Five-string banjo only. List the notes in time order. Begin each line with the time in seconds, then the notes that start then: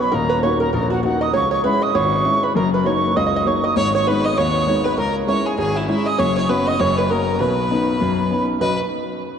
0.00 B4
0.12 A#4
0.29 B4
0.43 C#5
0.60 A#4
0.73 A#4
0.90 F#4
1.03 F#4
1.21 D#5
1.33 C#5
1.51 C#5
1.64 B4
1.82 D#5
1.95 C#5
2.43 B4
2.56 A#4
2.74 B4
2.86 C#5
3.17 D#5
3.26 D#5
3.36 D#5
3.47 C#5
3.64 D#5
3.77 C#5
3.95 C#5
4.07 B4
4.25 D#5
4.38 C#5
4.68 C#5
4.85 B4
4.98 A#4
5.28 C#5
5.47 G#4
5.58 G#4
5.77 E4
5.89 E4
6.06 D#5
6.18 C#5
6.37 C#5
6.49 B4
6.67 D#5
6.81 C#5
6.98 B4
7.11 A#4
7.40 B4
8.61 B4